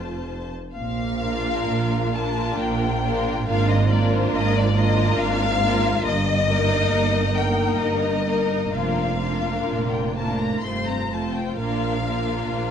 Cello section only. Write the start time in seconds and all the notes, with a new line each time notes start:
Already playing: F2
0.76 A#2
1.69 A#2
2.59 A#2
3.47 G#2
4.34 G#2
5.18 G#2
6.06 G2
6.92 G2
7.79 G2
8.74 F2
9.69 A#2
10.17 A2
10.64 G2
11.12 F2
11.59 A#2
12.51 A#2